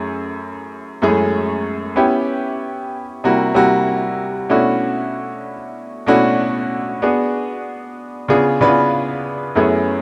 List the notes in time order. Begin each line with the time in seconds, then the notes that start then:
Already playing: F#2 A3 C#4 E4 G#4
1.02 F#2 G#3 C#4 E4 G#4
1.09 A3
1.96 B3 C#4 E4 G4
3.24 C3 G3 A#3 E4 F#4
3.54 C3 G3 A#3 E4 F#4
4.49 B2 A3 C#4 D4 E4 F#4
6.06 B2 A3 C#4 D4 E4 F#4
7.02 B3 D4 F#4 G#4
8.28 C#3 B3 D4 F4 G#4
8.61 C#3 B3 D4 E4 B4
8.68 F4
9.55 F#2 A3 B3 C#4 E4 G#4